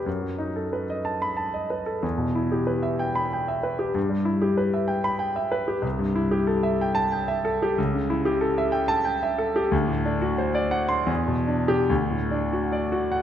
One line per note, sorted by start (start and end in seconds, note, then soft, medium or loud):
0.06 1.99 F#2 soft
0.22 0.49 F#3 soft
0.38 0.65 D#4 soft
0.56 0.82 A4 soft
0.73 0.99 B4 soft
0.90 1.15 D#5 soft
1.05 1.31 A5 soft
1.22 1.48 B5 medium
1.37 1.63 A5 soft
1.54 1.80 D#5 soft
1.70 1.97 B4 soft
1.86 2.03 A4 soft
2.03 3.92 E2 medium
2.18 2.45 B2 soft
2.35 2.62 E4 soft
2.52 2.78 G4 soft
2.67 2.94 B4 soft
2.83 3.10 E5 medium
2.99 3.26 G5 medium
3.15 3.42 B5 medium
3.33 3.58 G5 soft
3.48 3.74 E5 soft
3.63 3.89 B4 soft
3.79 3.95 G4 soft
3.94 5.79 G2 medium
4.10 4.36 G3 soft
4.25 4.52 E4 medium
4.42 4.68 G4 medium
4.57 4.84 B4 soft
4.74 5.00 E5 soft
4.88 5.15 G5 medium
5.04 5.30 B5 medium
5.19 5.46 G5 medium
5.36 5.62 E5 soft
5.52 5.77 B4 medium
5.68 5.84 G4 soft
5.82 7.72 C2 medium
5.99 6.24 G2 soft
6.15 6.41 E4 medium
6.31 6.57 G4 medium
6.47 6.73 A4 medium
6.63 6.89 E5 medium
6.81 7.06 G5 medium
6.95 7.21 A5 medium
7.12 7.38 G5 medium
7.28 7.54 E5 medium
7.45 7.71 A4 medium
7.62 7.78 G4 medium
7.78 9.69 C#2 medium
7.94 8.19 C#3 medium
8.10 8.35 E4 medium
8.25 8.51 G4 medium
8.41 8.67 A4 medium
8.58 8.83 E5 medium
8.72 8.99 G5 medium
8.88 9.15 A5 medium
9.05 9.32 G5 medium
9.23 9.49 E5 medium
9.38 9.65 A4 medium
9.56 9.73 G4 medium
9.72 11.05 D2 medium
9.88 10.16 A2 soft
10.05 10.33 D4 medium
10.22 10.49 F#4 medium
10.38 10.66 C5 medium
10.55 10.83 D5 medium
10.71 11.01 F#5 medium
10.89 11.08 C6 medium
11.07 11.85 E2 medium
11.28 11.60 B2 medium
11.47 11.80 D4 medium
11.68 11.89 G4 medium
11.90 13.22 D2 medium
12.11 12.44 A2 soft
12.31 12.64 D4 medium
12.53 12.85 F#4 medium
12.72 13.04 D5 medium
12.92 13.22 F#4 medium
13.12 13.22 F#5 medium